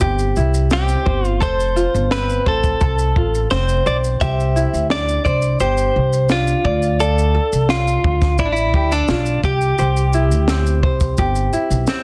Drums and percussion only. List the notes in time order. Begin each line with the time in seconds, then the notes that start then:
0.00 kick, shaker
0.19 shaker
0.36 shaker
0.54 shaker
0.71 snare, shaker
0.88 shaker
1.06 kick
1.25 shaker
1.42 kick, shaker
1.60 shaker
1.77 shaker
1.95 shaker
2.11 snare, shaker
2.30 shaker
2.46 kick
2.64 kick, shaker
2.81 kick, shaker
2.99 shaker
3.16 kick
3.35 shaker
3.51 snare, shaker
3.69 shaker
3.86 shaker
4.04 shaker
4.21 kick, shaker
4.40 shaker
4.57 shaker
4.74 shaker
4.90 snare, shaker
5.09 shaker
5.25 kick, shaker
5.42 shaker
5.60 shaker
5.77 shaker
6.13 shaker
6.29 snare, shaker
6.47 shaker
6.65 kick
6.82 shaker
7.00 shaker
7.18 shaker
7.53 shaker
7.69 snare, shaker
7.88 shaker
8.04 kick
8.22 kick, snare, shaker
8.38 kick, shaker
8.56 shaker
8.74 kick
8.92 shaker
9.08 snare, shaker
9.26 shaker
9.44 kick, shaker
9.61 shaker
9.78 shaker
9.97 shaker
10.13 shaker
10.31 shaker
10.48 snare, shaker
10.66 shaker
10.83 kick
11.00 kick, shaker
11.18 kick, shaker
11.35 shaker
11.53 shaker
11.71 shaker
11.87 snare, shaker